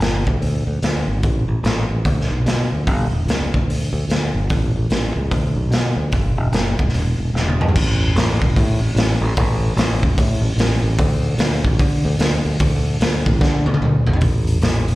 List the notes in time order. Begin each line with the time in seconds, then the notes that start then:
0.00 G1, snare, open hi-hat
0.27 D2, kick
0.40 D2, open hi-hat
0.67 D2
0.82 D2, snare, open hi-hat
1.08 G#1
1.23 A1, kick, open hi-hat
1.48 A1
1.63 A1, snare, open hi-hat
1.89 A1
2.05 D2, kick, open hi-hat
2.21 snare
2.31 B1
2.46 B2, snare, open hi-hat
2.72 D2
2.87 G1, kick, open hi-hat
3.11 E1
3.26 C#2, snare, open hi-hat
3.54 D2, kick
3.67 D2, open hi-hat
3.93 D2
4.09 D2, snare, open hi-hat
4.34 G1
4.50 A1, kick, open hi-hat
4.76 A1
4.90 A1, snare, open hi-hat
5.16 C#2
5.31 D2, kick, open hi-hat
5.56 B1
5.71 B2, snare, open hi-hat
5.96 D2
6.12 G1, kick, open hi-hat
6.37 E1
6.52 F#1, snare, open hi-hat
6.79 E1, kick
6.89 snare
6.93 E1, open hi-hat
7.18 E1
7.34 E1, snare
7.47 high tom
7.60 E2, mid tom
7.69 floor tom
7.76 A1, kick, crash
8.16 A1, snare, open hi-hat
8.42 E1, kick
8.56 A2, kick, open hi-hat
8.80 A1
8.95 A1, snare, open hi-hat
9.21 A1
9.37 A1, kick, open hi-hat
9.77 A1, snare, open hi-hat
10.03 E1, kick
10.18 A2, kick, open hi-hat
10.42 A1
10.56 A1, snare, open hi-hat
10.83 A1
10.98 D2, kick, open hi-hat
11.38 D2, snare, open hi-hat
11.64 A1, kick
11.79 D3, kick, open hi-hat
12.05 D2
12.19 D2, snare, open hi-hat
12.45 D2
12.59 D2, kick, open hi-hat
13.00 D2, snare, open hi-hat
13.26 A1, kick
13.41 D3, kick, snare
13.66 D2, high tom
13.74 high tom
13.81 D2, mid tom
14.07 B1, floor tom
14.13 floor tom
14.21 A1, kick, open hi-hat
14.47 open hi-hat
14.62 A1, snare, open hi-hat
14.88 E1, open hi-hat